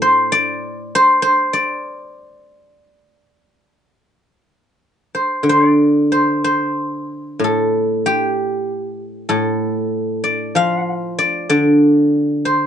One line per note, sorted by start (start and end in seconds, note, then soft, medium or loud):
0.00 0.91 A2 medium
0.00 0.13 G4 medium
0.00 1.26 A4 medium
0.00 0.95 C5 medium
0.32 1.53 D5 loud
0.95 1.22 C5 medium
1.22 3.20 C5 medium
1.53 4.73 D5 medium
5.15 5.49 C5 medium
5.43 7.41 D3 soft
5.49 5.67 C5 medium
5.67 7.34 D5 medium
6.12 6.44 C5 medium
6.44 8.43 C5 medium
7.39 9.28 A2 soft
7.44 9.28 A4 medium
8.06 10.41 G4 medium
9.29 11.18 A2 medium
9.29 11.48 A4 medium
10.24 11.18 D5 medium
10.55 12.43 F3 soft
10.55 12.23 F5 medium
11.19 11.49 D5 medium
11.49 12.67 D3 soft
11.49 12.67 D5 medium
12.45 12.67 C5 medium